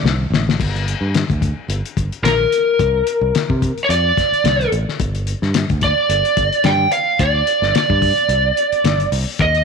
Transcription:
0.03 C2, snare
0.30 A1, snare
0.49 snare
0.60 G1, kick, crash
0.76 closed hi-hat
0.88 closed hi-hat
1.01 G2
1.15 snare, closed hi-hat
1.30 D2, kick, closed hi-hat
1.42 kick, closed hi-hat
1.68 G1, closed hi-hat
1.85 closed hi-hat
1.97 G1, kick, closed hi-hat
2.12 closed hi-hat
2.23 A#1 A#4, snare, closed hi-hat
2.52 closed hi-hat
2.79 C2, kick, closed hi-hat
3.07 closed hi-hat
3.21 C2
3.35 snare, closed hi-hat
3.50 C3, kick
3.62 kick, closed hi-hat
3.78 closed hi-hat
3.85 C#5
3.89 F2 D5, closed hi-hat
4.17 kick, snare, closed hi-hat
4.32 muted fingered electric bass stroke, closed hi-hat
4.44 C2, snare, closed hi-hat
4.61 closed hi-hat
4.72 A1, closed hi-hat
4.89 snare
5.00 G1, kick, closed hi-hat
5.15 closed hi-hat
5.27 closed hi-hat
5.42 G2, snare
5.54 snare, closed hi-hat
5.70 D2, kick, closed hi-hat
5.81 D5, kick, closed hi-hat
6.09 G1, closed hi-hat
6.25 closed hi-hat
6.37 G1, kick, closed hi-hat
6.53 closed hi-hat
6.64 G2 G5, snare, closed hi-hat
6.92 F5, closed hi-hat
7.19 D2 D5, kick, closed hi-hat
7.47 closed hi-hat
7.62 G1, snare
7.75 D5, snare, closed hi-hat
7.90 G2, kick
8.02 kick, open hi-hat
8.18 closed hi-hat
8.28 C2, closed hi-hat
8.57 closed hi-hat
8.72 muted fingered electric bass stroke, closed hi-hat
8.84 G1, snare, closed hi-hat
9.00 closed hi-hat
9.12 C2, open hi-hat
9.39 D#2 D#5, kick, closed hi-hat
9.55 closed hi-hat

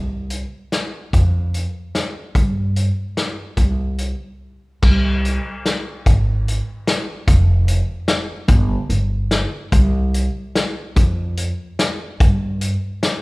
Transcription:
Already playing: C2
0.30 closed hi-hat
0.72 snare, closed hi-hat
1.13 F2, kick, closed hi-hat
1.54 closed hi-hat
1.95 snare, closed hi-hat
2.35 G2, kick, closed hi-hat
2.76 closed hi-hat
3.17 snare, closed hi-hat
3.57 C2, kick, closed hi-hat
3.98 closed hi-hat
4.82 C2, kick, crash
5.25 closed hi-hat
5.66 snare, closed hi-hat
6.06 G#1, kick, closed hi-hat
6.48 closed hi-hat
6.87 snare, closed hi-hat
7.27 F1, kick, closed hi-hat
7.68 closed hi-hat
8.08 snare, closed hi-hat
8.48 G1, kick, closed hi-hat
8.89 G1, closed hi-hat
9.31 snare, closed hi-hat
9.72 C2, kick, closed hi-hat
10.14 closed hi-hat
10.55 snare, closed hi-hat
10.96 F2, kick, closed hi-hat
11.37 closed hi-hat
11.79 snare, closed hi-hat
12.20 G2, kick, closed hi-hat
12.61 closed hi-hat
13.03 snare, closed hi-hat

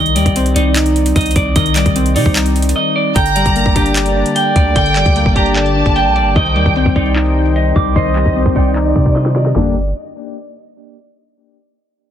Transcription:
Already playing: C2 D#3 D#5
0.06 closed hi-hat
0.16 D#2 G3 D5, closed hi-hat
0.26 C2, kick, closed hi-hat
0.36 C4, closed hi-hat
0.46 closed hi-hat
0.56 C2 D#4 D5, closed hi-hat
0.76 D#4, clap, closed hi-hat
0.86 closed hi-hat
0.96 closed hi-hat
1.06 closed hi-hat
1.16 C2 D#5, kick, closed hi-hat
1.21 closed hi-hat
1.26 closed hi-hat
1.31 closed hi-hat
1.36 C2 D5, kick, closed hi-hat
1.56 C2 D#3 D#5, kick, closed hi-hat
1.66 closed hi-hat
1.76 G3 D5, clap, closed hi-hat
1.86 C2, kick, closed hi-hat
1.96 C4, closed hi-hat
2.06 closed hi-hat
2.16 C3 D#4 D5, open hi-hat
2.26 C2, kick
2.36 D#4, clap, closed hi-hat
2.46 closed hi-hat
2.56 closed hi-hat
2.62 closed hi-hat
2.69 closed hi-hat
2.76 D#5
2.96 D5
3.16 G1 D3 A#3 G4 D5 G5 A#5, kick, closed hi-hat
3.26 closed hi-hat
3.36 G3 D5, closed hi-hat
3.46 G1, kick, closed hi-hat
3.56 A#3, closed hi-hat
3.66 G1, kick
3.76 G1 D4 G4, kick, closed hi-hat
3.86 closed hi-hat
3.96 D5, clap, closed hi-hat
4.06 closed hi-hat
4.16 D4
4.26 closed hi-hat
4.36 G5, closed hi-hat
4.56 D2 D5, kick, closed hi-hat
4.76 G1 D3 G5, kick, closed hi-hat
4.86 closed hi-hat
4.96 G3 D5, clap, closed hi-hat
5.06 D2, kick, closed hi-hat
5.16 A#3, closed hi-hat
5.26 G1, kick
5.36 D4 G4 A#5, kick, closed hi-hat
5.46 closed hi-hat
5.56 D5 A5, clap, closed hi-hat
5.66 closed hi-hat
5.76 D4
5.86 G1, kick, closed hi-hat
5.96 G5, closed hi-hat
6.06 A#1
6.16 D5, closed hi-hat
6.21 G1
6.36 C2 D#3 C4 C5 D#5 G5, kick, closed hi-hat
6.46 closed hi-hat
6.56 D#2 G3 D5, closed hi-hat
6.66 C2, kick, closed hi-hat
6.76 C4, closed hi-hat
6.86 C2, kick
6.96 C2 D#4 D5, kick, closed hi-hat
7.06 closed hi-hat
7.16 D#4, clap, closed hi-hat
7.26 closed hi-hat
7.46 closed hi-hat
7.56 D#5, closed hi-hat
7.76 C2 D6, kick, closed hi-hat
7.96 C2 D#3 C5 D#5, kick, closed hi-hat
8.06 closed hi-hat
8.15 G3, clap, closed hi-hat
8.26 C2, kick, closed hi-hat
8.36 C4, closed hi-hat
8.42 C2, kick, closed hi-hat
8.49 closed hi-hat
8.56 D#4 D5 G5, kick, closed hi-hat, open hi-hat
8.62 closed hi-hat
8.69 closed hi-hat
8.76 D#4 D5, clap, closed hi-hat
8.86 closed hi-hat
8.96 C3, kick
9.06 kick, closed hi-hat
9.16 D#5, snare, closed hi-hat
9.26 snare
9.36 D5 D#5, snare, closed hi-hat
9.41 closed hi-hat
9.46 snare, closed hi-hat
9.51 closed hi-hat
9.56 G1 D3 G3 A#3 D4 G4 D5, snare, floor tom

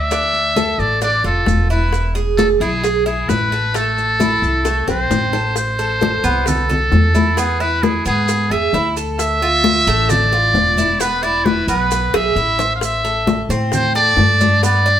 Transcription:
Already playing: D2 D5 E5
0.11 D4, high bongo, high conga, maracas
0.33 high conga, maracas
0.56 A4, high bongo, high conga, maracas
0.78 A1 D5, high bongo, high conga, maracas
1.02 D4 D5, high bongo, high conga, maracas
1.24 F1 F4 A4, high bongo, high conga, maracas
1.46 E1, high bongo, low bongo, high conga, maracas
1.70 E4 B4, high bongo, high conga, maracas
1.93 high bongo, high conga, maracas
2.15 G#4, high conga, maracas
2.37 A4, high bongo, high conga, maracas
2.60 B1 E4 G#4, high conga, maracas
2.84 G#4, high bongo, high conga, maracas
3.06 E4 G#4, high conga, maracas
3.29 A1 B4, high bongo, low bongo, high conga, maracas
3.52 A4, high conga, maracas
3.74 A3 A4, high bongo, high conga, maracas
3.98 high conga, maracas
4.20 E4, high bongo, high conga, maracas
4.42 C2, high bongo, high conga, maracas
4.65 A3, high bongo, high conga, maracas
4.88 B1 C4 C5, high bongo, high conga, maracas
5.11 A1, low bongo, high conga, maracas
5.33 A4, low bongo, high conga, maracas
5.56 C5, high bongo, high conga, maracas
5.79 A4, high bongo, high conga, maracas
6.01 high bongo, high conga, maracas
6.24 C2 B3, high bongo, maracas
6.46 A4, high bongo, high conga, low conga, maracas
6.69 A4, high bongo, high conga, low conga, maracas
6.92 E2, high bongo, low bongo, high conga, maracas
7.15 E4, high conga, maracas
7.37 B3 G#4, high bongo, high conga, maracas
7.60 E4 B4, high bongo, high conga, maracas
7.83 G#4, high bongo, high conga, maracas
8.06 G#2 B3 G#4, high bongo, high conga, maracas
8.28 high bongo, high conga, maracas
8.50 E2 G#4 E5, high bongo, high conga, maracas
8.73 D2 E4, high bongo, low bongo, high conga, maracas
8.97 A4, maracas
9.19 E5, high bongo, high conga, maracas
9.42 F4, high bongo, high conga, maracas
9.64 high bongo, high conga, maracas
9.87 A1 A3, high bongo, maracas
10.09 D5, high bongo, high conga, low conga, maracas
10.32 F4, high bongo, high conga, maracas
10.54 E1, high bongo, low bongo, high conga, maracas
10.77 E4, high conga, maracas
11.00 B3 B4, high bongo, high conga, maracas
11.23 E4 D5, high bongo, high conga, maracas
11.45 B4, high bongo, high conga, maracas
11.67 B1 B3 B4, high bongo, high conga, maracas
11.91 high bongo, high conga, maracas
12.14 B1 G#4 E5, high bongo, high conga, maracas
12.36 A1 E4, high conga, maracas
12.59 C5, low bongo, maracas
12.76 F5
12.81 E5, high bongo, high conga, maracas
13.04 A4, high bongo, high conga, maracas
13.27 high bongo, high conga, maracas
13.49 A2 C4, high bongo, maracas
13.72 C5, high bongo, high conga, low conga, maracas
13.95 A4 D5, high bongo, high conga, maracas
14.17 G2, high bongo, low bongo, high conga, maracas
14.41 D4, high conga, maracas
14.63 B3 D5, high bongo, high conga, maracas
14.86 D4, high bongo, high conga, maracas

